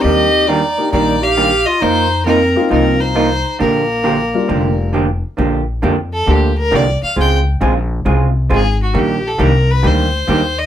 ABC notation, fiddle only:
X:1
M:4/4
L:1/8
Q:"Swing" 1/4=135
K:Bb
V:1 name="Fiddle"
e2 d2 d f2 e | c2 B2 B c3 | B6 z2 | z3 A G B d f |
g z4 z _A _G | G A B _c =c3 e |]